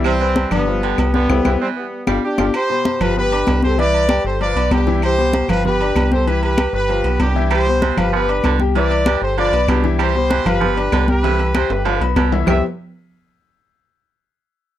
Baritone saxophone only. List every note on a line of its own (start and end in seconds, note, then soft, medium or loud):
0.04 0.13 C3 loud
0.20 0.56 E3 medium
0.83 0.99 D3 medium
1.14 1.30 D3 medium
1.45 1.53 E3 medium
1.61 1.85 E3 medium
2.07 2.24 G3 medium
2.38 2.46 F3 medium
7.51 7.67 G3 medium
7.81 7.98 E3 medium
8.13 8.29 F3 loud
8.44 8.61 D3 medium
8.75 8.91 C3 medium
9.07 9.23 E3 medium
9.37 9.54 D3 medium
9.69 9.85 B2 medium
9.99 10.15 G3 medium
10.30 10.46 E3 medium
10.60 10.77 F3 loud
10.92 11.09 D3 loud
11.23 11.40 C3 medium
11.55 11.71 E3 medium
11.85 12.01 D3 loud
12.16 12.33 B2 medium
12.46 12.58 C3 medium